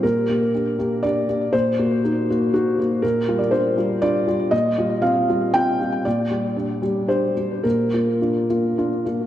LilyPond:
\new Staff \with { instrumentName = "Felt piano" } { \time 3/4 \key bes \major \tempo 4 = 119 << { bes'2 d''4 | c''2 ges'4 | bes'8. d''16 c''4 d''4 | ees''4 f''4 g''4 |
d''2 c''4 | bes'2~ bes'8 r8 | } \\ { bes,8 <bes g'>8 <d' g'>8 <bes g'>8 <d' g'>8 <bes g'>8 | bes,8 <bes ges'>8 <ees' ges'>8 <bes ges'>8 ees'8 <bes ges'>8 | bes,8 <g f'>8 <d' f'>8 <g f'>8 <d' f'>8 <g f'>8 | bes,8 <g f'>8 <c' f'>8 <g f'>8 <c' f'>8 <g f'>8 |
bes,8 <g g'>8 <d' g'>8 <g g'>8 <d' g'>8 <g g'>8 | bes,8 <bes f'>8 <d' f'>8 <bes f'>8 <d' f'>8 <bes f'>8 | } >> }